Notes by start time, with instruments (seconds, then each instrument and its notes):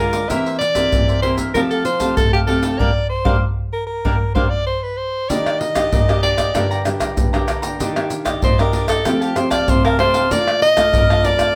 Already playing: nylon-string guitar D3 G#3, cavaquinho G#4, soprano saxophone A#4
0.00 nylon-string guitar A#3 F4, cavaquinho A#4 D5 F5
0.13 cavaquinho A#4 D5 F5, pandeiro, maracas
0.29 nylon-string guitar E3 A#3 C4 G4, cavaquinho E4 A#4 C5 E5, soprano saxophone E5, pandeiro, maracas, surdo
0.45 cavaquinho A#4 C5 E5, pandeiro, maracas
0.59 soprano saxophone D5, muted cavaquinho stroke, pandeiro, maracas
0.74 nylon-string guitar A#3 C4 G4, cavaquinho A#4 C5 E5, pandeiro, maracas, surdo
0.92 nylon-string guitar E3, pandeiro, maracas, surdo
1.08 cavaquinho A#4 C5 E5, pandeiro, maracas
1.22 nylon-string guitar A#3 C4 G4, cavaquinho E4 A#4 C5 E5, soprano saxophone C5, pandeiro
1.37 cavaquinho A#4 C5 E5, pandeiro, maracas, surdo
1.54 nylon-string guitar F3 A3 C4 G4, cavaquinho G4 A4 F5 A5, soprano saxophone A#4, pandeiro, maracas, surdo
1.70 cavaquinho G4 F5 A5, soprano saxophone A4, pandeiro, maracas
1.85 soprano saxophone C5, pandeiro, maracas
2.00 nylon-string guitar A3 C4 G4, cavaquinho G4 F5 A5, pandeiro, maracas, surdo
2.17 nylon-string guitar C3, soprano saxophone A4, muted cavaquinho stroke, pandeiro, maracas, surdo
2.33 soprano saxophone G4, cavaquinho G4 F5 A5, pandeiro, maracas, surdo
2.47 nylon-string guitar A3 C4 G4, cavaquinho G4 A4 F5 A5, soprano saxophone A4, pandeiro
2.62 cavaquinho G4 F5 A5, pandeiro, maracas
2.79 nylon-string guitar G3 A#3 D4, cavaquinho A#4 D5 F5, soprano saxophone D5, surdo
3.09 soprano saxophone C5
3.25 nylon-string guitar G3 A#3 D4, cavaquinho A#4 D5 F5, surdo
3.73 soprano saxophone A#4
3.87 soprano saxophone A#4
4.05 nylon-string guitar G3 A#3 D4, cavaquinho A#4 D5 F5, surdo
4.35 nylon-string guitar G3 A#3 D4, cavaquinho A#4 D5 F5, soprano saxophone C5, surdo
4.50 soprano saxophone D5
4.67 soprano saxophone C5
4.83 soprano saxophone B4
4.97 soprano saxophone C5
5.29 nylon-string guitar D#3 A#3 D4 G4, cavaquinho D4 G4 D5 D#5, soprano saxophone D5, pandeiro, maracas, surdo
5.46 pandeiro, tamborim, maracas
5.59 soprano saxophone D#5, muted cavaquinho stroke, pandeiro
5.75 nylon-string guitar A#3 D4 G4, cavaquinho G4 D5 D#5, pandeiro, tamborim, maracas, surdo
5.92 nylon-string guitar A#2, cavaquinho D4 G4 D5 D#5, pandeiro, maracas, surdo
6.08 nylon-string guitar A#3 D4 G4, cavaquinho G4 D5 D#5, pandeiro, tamborim, maracas
6.22 cavaquinho D4 G4 D5 D#5, soprano saxophone D5, pandeiro
6.37 cavaquinho G4 D5 D#5, pandeiro, tamborim, maracas, surdo
6.54 nylon-string guitar G2 D3 G3 A#3 D4 G4, cavaquinho A4 D5 G5 A#5, pandeiro, tamborim, maracas, surdo
6.71 cavaquinho D5 G5 A#5, pandeiro, maracas
6.85 nylon-string guitar D3 G3 A#3 D4 G4, muted cavaquinho stroke, pandeiro, tamborim, maracas
7.00 cavaquinho D5 G5 A#5, pandeiro, tamborim, maracas, surdo
7.17 nylon-string guitar G2, pandeiro, maracas, surdo
7.33 nylon-string guitar D3 G3 A#3 D4 G4, cavaquinho D5 G5 A#5, pandeiro, tamborim, maracas, surdo
7.48 cavaquinho A4 D5 G5 A#5, pandeiro, tamborim, maracas
7.62 cavaquinho D5 G5 A#5, pandeiro, maracas
7.79 nylon-string guitar D#3 A#3 D4 G4, cavaquinho D4 G4 D5 D#5, pandeiro, maracas, surdo
7.96 nylon-string guitar A#3 D4 G4, pandeiro, tamborim, maracas
8.10 muted cavaquinho stroke, pandeiro, maracas
8.25 cavaquinho G4 D5 D#5, pandeiro, tamborim, maracas, surdo
8.42 nylon-string guitar A#2, cavaquinho D4 G4 D5 D#5, soprano saxophone C5, pandeiro, maracas, surdo
8.58 nylon-string guitar A#3 D4 G4, cavaquinho G4 D5 D#5, soprano saxophone A#4, pandeiro, tamborim, maracas
8.72 cavaquinho D4 G4 D5 D#5, pandeiro
8.87 cavaquinho G4 D5 D#5, soprano saxophone A4, pandeiro, tamborim, maracas, surdo
9.04 nylon-string guitar F3 A3 C4 G4, cavaquinho G4 A4 F5 A5, pandeiro, tamborim, maracas, surdo
9.21 soprano saxophone G4, cavaquinho G4 F5 A5, pandeiro, maracas
9.36 nylon-string guitar A3 C4 G4, soprano saxophone C5, muted cavaquinho stroke, pandeiro, tamborim, maracas
9.50 cavaquinho G4 F5 A5, soprano saxophone D5, pandeiro, tamborim, maracas, surdo
9.68 nylon-string guitar C3, soprano saxophone C5, pandeiro, maracas, surdo
9.84 cavaquinho G4 F5 A5, soprano saxophone A#4, pandeiro, tamborim, maracas, surdo
9.98 nylon-string guitar A3 C4 G4, cavaquinho G4 A4 F5 A5, soprano saxophone C5, pandeiro, tamborim
10.14 cavaquinho G4 F5 A5, pandeiro, maracas
10.30 nylon-string guitar A#2 A3 D4 F4, cavaquinho A#4 D5 F5 A5, soprano saxophone D5, pandeiro, maracas, surdo
10.47 pandeiro, tamborim, maracas
10.62 soprano saxophone D#5, muted cavaquinho stroke, pandeiro
10.76 nylon-string guitar A3 D4 F4, cavaquinho D5 F5 A5, pandeiro, tamborim, maracas, surdo
10.94 nylon-string guitar F2, cavaquinho A#4 D5 F5 A5, pandeiro, maracas, surdo
11.10 nylon-string guitar A3 D4 F4, cavaquinho D5 F5 A5, pandeiro, tamborim, maracas
11.24 cavaquinho A#4 D5 F5 A5, soprano saxophone D5, pandeiro, maracas
11.38 cavaquinho D5 F5 A5, pandeiro, tamborim, maracas, surdo